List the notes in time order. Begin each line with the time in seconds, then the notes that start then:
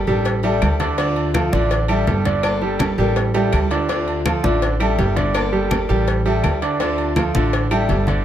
0.07 A1 G3 A#3 D4 G4 A4, high conga
0.25 muted steel-string acoustic guitar stroke, cowbell, high conga, low agogo
0.43 G3 D4 E4 G4 A4, high conga, low agogo
0.61 D2 D3 G3 D4 E4, cowbell, high conga, low timbale, low agogo, claves
0.80 D3 D4 D5, cowbell, high conga, low agogo
0.98 D3 A3 C4 D4 F4 D5, cowbell, high conga, low agogo
1.16 high conga, low agogo
1.34 D3 F3 A3 C4 F4 A4, cowbell, high conga, low timbale, low agogo, claves
1.52 A1 D3 A3 C4 D4 F4 D5, high conga
1.71 muted steel-string acoustic guitar stroke, cowbell, high conga, low agogo
1.88 G3 D4 E4 G4 A4, high conga, low agogo, claves
2.07 G1 D3 G3 D4 E4 G4 A4, cowbell, high conga, low timbale
2.25 D3 D4 D5, cowbell, high conga
2.43 D3 G3 A#3 D4 A4, cowbell, high conga, low agogo, claves
2.62 G3 G4 A4, high conga
2.79 G3 A#3 D4 A4, cowbell, high conga, high timbale, low agogo, claves
2.98 A1 G3 A#3 D4 G4 A4, high conga
3.16 muted steel-string acoustic guitar stroke, cowbell, high conga, high timbale, low agogo
3.34 G3 D4 E4 G4 A4, high conga, low timbale, low agogo
3.52 D2 D3 G3 D4 E4, cowbell, high conga, low timbale, low agogo, claves
3.71 D3 D4 D5, cowbell, low timbale, low agogo
3.89 D3 A3 C4 D4 F4 D5, cowbell, high conga, low agogo
4.08 high conga, low agogo
4.25 D3 F3 A3 C4 F4 A4, cowbell, high conga, low timbale, low agogo, claves
4.43 A1 D3 A3 C4 D4 F4 D5, high conga
4.62 muted steel-string acoustic guitar stroke, cowbell, high conga, low agogo
4.80 G3 D4 E4 G4 A4, high conga, low agogo, claves
4.98 G1 D3 G3 D4 E4 G4 A4, cowbell, high conga, low timbale
5.16 D3 D4 D5, cowbell, high conga
5.34 D3 G3 A#3 D4 A4, cowbell, high conga, low agogo, claves
5.52 G3 G4 A4, high conga
5.71 G3 A#3 D4 A4, cowbell, high conga, low timbale, low agogo, claves
5.89 A1 G3 A#3 D4 G4 A4, high conga
6.07 muted steel-string acoustic guitar stroke, cowbell, high conga, low agogo
6.25 G3 D4 E4 G4 A4, high conga, low agogo
6.44 D2 D3 G3 D4 E4, cowbell, high conga, low timbale, low agogo, claves
6.62 D3 D4 D5, cowbell, low agogo
6.80 D3 A3 C4 D4 F4 D5, cowbell, high conga, low agogo
6.98 high conga, low agogo
7.16 D3 F3 A3 F4 A4, cowbell, high conga, low timbale, low agogo, claves
7.35 A1 D3 A3 C4 D4 F4 D5, high conga
7.53 muted steel-string acoustic guitar stroke, cowbell, high conga, low agogo
7.71 G3 D4 E4 G4 A4, high conga, low agogo, claves
7.89 G1 D3 G3 D4 E4 G4 A4, cowbell, high conga, low timbale
8.07 D3 D4 D5, cowbell, high conga